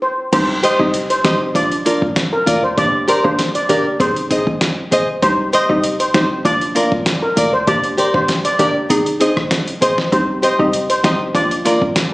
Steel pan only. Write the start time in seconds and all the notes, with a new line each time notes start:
0.02 C5
0.33 C5
0.63 C5
0.80 D#5
1.10 C5
1.25 C5
1.55 D5
2.33 A#4
2.63 C5
2.78 D5
3.08 C5
3.25 C5
3.55 D5
3.70 D5
4.00 C5
5.23 C5
5.53 C5
5.69 D#5
6.00 C5
6.14 C5
6.45 D5
7.22 A#4
7.53 C5
7.67 D5
7.98 C5
8.14 C5
8.45 D5
8.59 D5
9.82 C5
10.12 C5
10.43 C5
10.59 D#5
10.90 C5
11.04 C5
11.35 D5